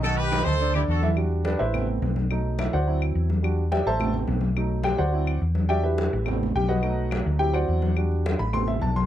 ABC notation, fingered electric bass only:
X:1
M:4/4
L:1/8
Q:1/4=212
K:Em
V:1 name="Fingered electric bass" clef=bass
B,,,3 D,,3 E,,2- | E,,3 A,,,3 B,,,2- | B,,,3 D,,3 E,,2- | E,,3 A,,,3 B,,,2- |
B,,,3 D,,3 E,,2- | E,,3 A,,,3 B,,,2- | B,,,3 D,,3 E,,2- | E,,3 A,,,3 B,,,2 |]